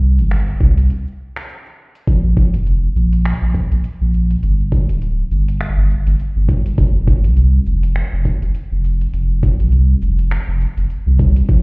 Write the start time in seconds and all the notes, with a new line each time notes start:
Already playing: C2
0.19 G1, open hi-hat, cabasa
0.31 finger snap, open hi-hat, cabasa
0.48 cabasa
0.60 C2, kick
0.78 open hi-hat, cabasa
0.90 open hi-hat, cabasa
1.07 cabasa
1.36 finger snap, open hi-hat, cabasa
1.49 open hi-hat, cabasa
1.66 cabasa
1.95 open hi-hat, cabasa
2.07 A#1, kick, open hi-hat, cabasa
2.25 cabasa
2.37 kick, cabasa
2.54 F1, open hi-hat, cabasa
2.67 open hi-hat, cabasa
2.84 cabasa
2.96 A#1, cabasa
3.13 open hi-hat, cabasa
3.25 finger snap, open hi-hat, cabasa
3.42 A#1, cabasa
3.54 kick, cabasa
3.72 A#1, open hi-hat, cabasa
3.84 open hi-hat, cabasa
4.01 A#1, cabasa
4.14 cabasa
4.31 open hi-hat, cabasa
4.43 G1, open hi-hat, cabasa
4.60 cabasa
4.72 kick, cabasa
4.89 D1, open hi-hat, cabasa
5.02 open hi-hat, cabasa
5.19 cabasa
5.31 G1, cabasa
5.48 open hi-hat, cabasa
5.61 finger snap, open hi-hat, cabasa
5.77 G1, cabasa
5.90 cabasa
6.07 G1, open hi-hat, cabasa
6.20 open hi-hat, cabasa
6.36 G1, cabasa
6.49 kick, cabasa
6.66 open hi-hat, cabasa
6.78 F1, kick, open hi-hat, cabasa
6.95 cabasa
7.07 kick, cabasa
7.24 C2, open hi-hat, cabasa
7.37 open hi-hat, cabasa
7.54 cabasa
7.66 F1, cabasa
7.83 open hi-hat, cabasa
7.96 finger snap, open hi-hat, cabasa
8.13 F1, cabasa
8.25 kick, cabasa
8.42 F1, open hi-hat, cabasa
8.55 open hi-hat, cabasa
8.72 F1, cabasa
8.84 cabasa
9.01 open hi-hat, cabasa
9.13 F1, open hi-hat, cabasa
9.30 cabasa
9.43 kick, cabasa
9.60 C2, open hi-hat, cabasa
9.72 open hi-hat, cabasa
9.89 cabasa
10.02 F1, cabasa
10.19 open hi-hat, cabasa
10.31 finger snap, open hi-hat, cabasa
10.48 F1, cabasa
10.61 cabasa
10.77 F1, open hi-hat, cabasa
10.90 open hi-hat, cabasa
11.06 C2, cabasa
11.19 kick, cabasa
11.36 open hi-hat, cabasa
11.49 A#1, kick, open hi-hat, cabasa